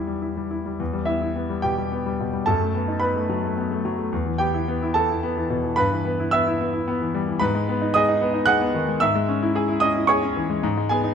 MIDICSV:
0, 0, Header, 1, 2, 480
1, 0, Start_track
1, 0, Key_signature, 1, "minor"
1, 0, Tempo, 571973
1, 668, Time_signature, 3, 2, 24, 8
1, 1139, Tempo, 552995
1, 5459, Tempo, 537634
1, 6419, Key_signature, 5, "minor"
1, 9750, End_track
2, 0, Start_track
2, 0, Title_t, "Grand piano"
2, 0, Program_c, 0, 0
2, 0, Control_c, 0, 64, 127
2, 0, Note_on_c, 0, 40, 49
2, 0, Note_on_c, 0, 55, 40
2, 0, Note_on_c, 0, 64, 42
2, 0, Note_on_c, 0, 71, 45
2, 0, Note_on_c, 0, 76, 61
2, 61, Note_off_c, 0, 55, 0
2, 61, Note_on_c, 0, 55, 38
2, 133, Note_off_c, 0, 64, 0
2, 145, Note_off_c, 0, 71, 0
2, 174, Note_off_c, 0, 76, 0
2, 185, Note_on_c, 0, 64, 42
2, 256, Note_off_c, 0, 55, 0
2, 308, Note_on_c, 0, 55, 40
2, 380, Note_off_c, 0, 64, 0
2, 425, Note_on_c, 0, 64, 43
2, 503, Note_off_c, 0, 55, 0
2, 551, Note_on_c, 0, 55, 36
2, 620, Note_off_c, 0, 64, 0
2, 633, Note_off_c, 0, 40, 0
2, 668, Note_on_c, 0, 40, 55
2, 669, Note_off_c, 0, 55, 0
2, 685, Control_c, 0, 64, 0
2, 782, Note_on_c, 0, 55, 43
2, 806, Control_c, 0, 64, 127
2, 885, Note_on_c, 0, 76, 69
2, 894, Note_on_c, 0, 64, 49
2, 899, Note_on_c, 0, 59, 44
2, 972, Note_off_c, 0, 55, 0
2, 1008, Note_off_c, 0, 64, 0
2, 1021, Note_on_c, 0, 64, 46
2, 1089, Note_off_c, 0, 59, 0
2, 1139, Note_on_c, 0, 59, 47
2, 1212, Note_off_c, 0, 64, 0
2, 1259, Note_on_c, 0, 55, 45
2, 1333, Note_off_c, 0, 59, 0
2, 1370, Note_on_c, 0, 79, 73
2, 1372, Note_off_c, 0, 76, 0
2, 1377, Note_on_c, 0, 67, 54
2, 1381, Note_on_c, 0, 47, 48
2, 1453, Note_off_c, 0, 55, 0
2, 1501, Note_on_c, 0, 55, 46
2, 1574, Note_off_c, 0, 47, 0
2, 1626, Note_on_c, 0, 59, 50
2, 1693, Note_off_c, 0, 55, 0
2, 1749, Note_on_c, 0, 55, 46
2, 1815, Note_off_c, 0, 59, 0
2, 1873, Note_on_c, 0, 47, 46
2, 1936, Note_off_c, 0, 55, 0
2, 1985, Note_on_c, 0, 55, 42
2, 2058, Note_off_c, 0, 47, 0
2, 2063, Note_off_c, 0, 67, 0
2, 2065, Note_off_c, 0, 40, 0
2, 2094, Note_off_c, 0, 79, 0
2, 2094, Note_on_c, 0, 81, 80
2, 2102, Note_off_c, 0, 55, 0
2, 2106, Note_on_c, 0, 69, 60
2, 2109, Note_on_c, 0, 42, 59
2, 2113, Control_c, 0, 64, 0
2, 2223, Note_on_c, 0, 57, 47
2, 2281, Control_c, 0, 64, 127
2, 2345, Note_on_c, 0, 59, 46
2, 2411, Note_off_c, 0, 57, 0
2, 2460, Note_on_c, 0, 63, 46
2, 2532, Note_off_c, 0, 59, 0
2, 2546, Note_off_c, 0, 69, 0
2, 2561, Note_on_c, 0, 83, 76
2, 2570, Note_on_c, 0, 71, 55
2, 2573, Note_off_c, 0, 81, 0
2, 2577, Note_on_c, 0, 59, 49
2, 2649, Note_off_c, 0, 63, 0
2, 2700, Note_on_c, 0, 57, 47
2, 2767, Note_off_c, 0, 59, 0
2, 2819, Note_on_c, 0, 54, 47
2, 2888, Note_off_c, 0, 57, 0
2, 2944, Note_on_c, 0, 57, 45
2, 3007, Note_off_c, 0, 54, 0
2, 3060, Note_on_c, 0, 59, 54
2, 3128, Note_off_c, 0, 57, 0
2, 3183, Note_on_c, 0, 57, 51
2, 3246, Note_off_c, 0, 59, 0
2, 3251, Note_off_c, 0, 71, 0
2, 3282, Note_off_c, 0, 83, 0
2, 3302, Note_on_c, 0, 54, 52
2, 3367, Note_off_c, 0, 57, 0
2, 3420, Note_on_c, 0, 57, 45
2, 3486, Note_off_c, 0, 54, 0
2, 3498, Note_off_c, 0, 42, 0
2, 3533, Note_off_c, 0, 57, 0
2, 3541, Note_on_c, 0, 40, 61
2, 3542, Control_c, 0, 64, 0
2, 3658, Note_on_c, 0, 52, 51
2, 3702, Control_c, 0, 64, 127
2, 3766, Note_on_c, 0, 79, 77
2, 3777, Note_on_c, 0, 67, 59
2, 3778, Note_on_c, 0, 59, 54
2, 3845, Note_off_c, 0, 52, 0
2, 3901, Note_on_c, 0, 64, 53
2, 3966, Note_off_c, 0, 59, 0
2, 4025, Note_on_c, 0, 59, 58
2, 4088, Note_off_c, 0, 64, 0
2, 4148, Note_on_c, 0, 64, 56
2, 4211, Note_off_c, 0, 59, 0
2, 4222, Note_off_c, 0, 67, 0
2, 4250, Note_off_c, 0, 79, 0
2, 4250, Note_on_c, 0, 81, 82
2, 4262, Note_on_c, 0, 69, 65
2, 4267, Note_on_c, 0, 59, 51
2, 4332, Note_off_c, 0, 64, 0
2, 4384, Note_on_c, 0, 64, 49
2, 4451, Note_off_c, 0, 59, 0
2, 4503, Note_on_c, 0, 59, 59
2, 4569, Note_off_c, 0, 64, 0
2, 4622, Note_on_c, 0, 52, 52
2, 4687, Note_off_c, 0, 59, 0
2, 4736, Note_on_c, 0, 47, 53
2, 4806, Note_off_c, 0, 52, 0
2, 4856, Note_on_c, 0, 52, 51
2, 4922, Note_off_c, 0, 47, 0
2, 4937, Note_off_c, 0, 69, 0
2, 4938, Note_off_c, 0, 40, 0
2, 4960, Note_on_c, 0, 83, 96
2, 4966, Note_off_c, 0, 81, 0
2, 4970, Note_on_c, 0, 71, 73
2, 4971, Note_off_c, 0, 52, 0
2, 4977, Note_on_c, 0, 43, 69
2, 4982, Control_c, 0, 64, 0
2, 5091, Note_on_c, 0, 52, 52
2, 5106, Control_c, 0, 64, 127
2, 5213, Note_on_c, 0, 59, 56
2, 5288, Note_off_c, 0, 52, 0
2, 5339, Note_on_c, 0, 64, 53
2, 5410, Note_off_c, 0, 59, 0
2, 5425, Note_off_c, 0, 71, 0
2, 5441, Note_on_c, 0, 88, 94
2, 5454, Note_off_c, 0, 83, 0
2, 5454, Note_on_c, 0, 76, 72
2, 5456, Note_on_c, 0, 59, 65
2, 5534, Note_off_c, 0, 64, 0
2, 5582, Note_on_c, 0, 64, 62
2, 5652, Note_off_c, 0, 59, 0
2, 5704, Note_on_c, 0, 59, 56
2, 5773, Note_off_c, 0, 64, 0
2, 5816, Note_on_c, 0, 64, 54
2, 5893, Note_off_c, 0, 59, 0
2, 5943, Note_on_c, 0, 59, 69
2, 6008, Note_off_c, 0, 64, 0
2, 6069, Note_on_c, 0, 52, 58
2, 6132, Note_off_c, 0, 59, 0
2, 6140, Note_off_c, 0, 76, 0
2, 6169, Note_off_c, 0, 88, 0
2, 6183, Note_on_c, 0, 55, 59
2, 6255, Note_off_c, 0, 52, 0
2, 6304, Note_on_c, 0, 52, 58
2, 6373, Note_off_c, 0, 55, 0
2, 6388, Note_off_c, 0, 43, 0
2, 6406, Note_on_c, 0, 83, 94
2, 6417, Note_on_c, 0, 71, 72
2, 6419, Note_on_c, 0, 44, 79
2, 6422, Note_off_c, 0, 52, 0
2, 6435, Control_c, 0, 64, 0
2, 6544, Note_on_c, 0, 56, 62
2, 6598, Control_c, 0, 64, 127
2, 6667, Note_on_c, 0, 59, 65
2, 6733, Note_off_c, 0, 56, 0
2, 6782, Note_on_c, 0, 63, 62
2, 6854, Note_off_c, 0, 59, 0
2, 6863, Note_off_c, 0, 71, 0
2, 6891, Note_off_c, 0, 83, 0
2, 6891, Note_on_c, 0, 87, 105
2, 6904, Note_on_c, 0, 75, 80
2, 6907, Note_on_c, 0, 68, 72
2, 6969, Note_off_c, 0, 63, 0
2, 7024, Note_on_c, 0, 63, 68
2, 7090, Note_off_c, 0, 68, 0
2, 7137, Note_on_c, 0, 59, 66
2, 7208, Note_off_c, 0, 63, 0
2, 7249, Note_on_c, 0, 63, 65
2, 7324, Note_off_c, 0, 59, 0
2, 7340, Note_off_c, 0, 75, 0
2, 7353, Note_on_c, 0, 90, 113
2, 7364, Note_on_c, 0, 78, 89
2, 7367, Note_off_c, 0, 87, 0
2, 7372, Note_on_c, 0, 68, 73
2, 7441, Note_off_c, 0, 63, 0
2, 7492, Note_on_c, 0, 59, 67
2, 7563, Note_off_c, 0, 68, 0
2, 7611, Note_on_c, 0, 51, 65
2, 7685, Note_off_c, 0, 59, 0
2, 7735, Note_on_c, 0, 56, 61
2, 7805, Note_off_c, 0, 51, 0
2, 7817, Note_off_c, 0, 78, 0
2, 7818, Note_off_c, 0, 44, 0
2, 7841, Note_on_c, 0, 88, 99
2, 7845, Note_off_c, 0, 90, 0
2, 7853, Note_on_c, 0, 76, 74
2, 7855, Note_off_c, 0, 56, 0
2, 7855, Note_on_c, 0, 44, 76
2, 7867, Control_c, 0, 64, 0
2, 7975, Note_on_c, 0, 56, 67
2, 8039, Control_c, 0, 64, 127
2, 8094, Note_on_c, 0, 61, 63
2, 8167, Note_off_c, 0, 56, 0
2, 8219, Note_on_c, 0, 64, 65
2, 8286, Note_off_c, 0, 61, 0
2, 8334, Note_on_c, 0, 68, 71
2, 8408, Note_off_c, 0, 64, 0
2, 8452, Note_on_c, 0, 64, 64
2, 8525, Note_off_c, 0, 68, 0
2, 8537, Note_off_c, 0, 76, 0
2, 8555, Note_on_c, 0, 87, 96
2, 8565, Note_on_c, 0, 75, 75
2, 8566, Note_off_c, 0, 88, 0
2, 8569, Note_on_c, 0, 61, 63
2, 8644, Note_off_c, 0, 64, 0
2, 8692, Note_on_c, 0, 64, 60
2, 8763, Note_off_c, 0, 61, 0
2, 8792, Note_off_c, 0, 75, 0
2, 8797, Note_on_c, 0, 85, 84
2, 8804, Note_off_c, 0, 87, 0
2, 8808, Note_on_c, 0, 73, 67
2, 8811, Note_on_c, 0, 68, 71
2, 8885, Note_off_c, 0, 64, 0
2, 8935, Note_on_c, 0, 61, 62
2, 9005, Note_off_c, 0, 68, 0
2, 9058, Note_on_c, 0, 52, 61
2, 9127, Note_off_c, 0, 61, 0
2, 9178, Note_on_c, 0, 56, 58
2, 9248, Note_off_c, 0, 52, 0
2, 9258, Note_off_c, 0, 73, 0
2, 9259, Note_off_c, 0, 44, 0
2, 9286, Note_off_c, 0, 85, 0
2, 9296, Note_off_c, 0, 56, 0
2, 9297, Note_on_c, 0, 44, 82
2, 9310, Control_c, 0, 64, 0
2, 9423, Note_on_c, 0, 56, 59
2, 9429, Control_c, 0, 64, 127
2, 9530, Note_on_c, 0, 80, 85
2, 9543, Note_on_c, 0, 59, 61
2, 9544, Note_on_c, 0, 68, 69
2, 9612, Note_off_c, 0, 56, 0
2, 9662, Note_on_c, 0, 63, 58
2, 9733, Note_off_c, 0, 59, 0
2, 9750, Note_off_c, 0, 44, 0
2, 9750, Note_off_c, 0, 63, 0
2, 9750, Note_off_c, 0, 68, 0
2, 9750, Note_off_c, 0, 80, 0
2, 9750, End_track
0, 0, End_of_file